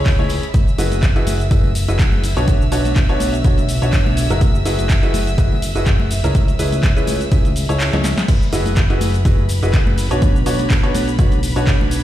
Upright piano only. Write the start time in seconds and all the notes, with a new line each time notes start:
Already playing: C#4 E4 G#4 C#5
0.19 C#4 E4 G#4 C#5
0.78 E4 F#4 G#4 B4
1.16 E4 F#4 G#4 B4
1.51 E4 F#4 G#4 B4
1.88 E4 F#4 G#4 B4
2.37 D4 F#4 B4 C#5
2.72 D4 F#4 B4 C#5
3.09 D4 F#4 B4 C#5
3.44 D4 F#4 B4 C#5
3.82 D4 F#4 B4 C#5
4.30 E4 F#4 G#4 A#4
4.65 E4 F#4 G#4 B4
5.03 E4 F#4 G#4 B4
5.38 E4 F#4 G#4 B4
5.75 E4 F#4 G#4 B4
6.24 C#4 E4 G#4 A#4
6.59 C#4 E4 G#4 B4
6.96 C#4 E4 G#4 B4
7.32 C#4 E4 G#4 B4
7.69 C#4 E4 G#4 C#5
7.93 C#4 E4 G#4 C#5
8.53 E4 F#4 G#4 B4
8.90 E4 F#4 G#4 B4
9.25 E4 F#4 G#4 B4
9.63 E4 F#4 G#4 B4
10.11 D4 F#4 B4 C#5
10.46 D4 F#4 B4 C#5
10.83 D4 F#4 B4 C#5
11.19 D4 F#4 B4 C#5
11.56 D4 F#4 B4 C#5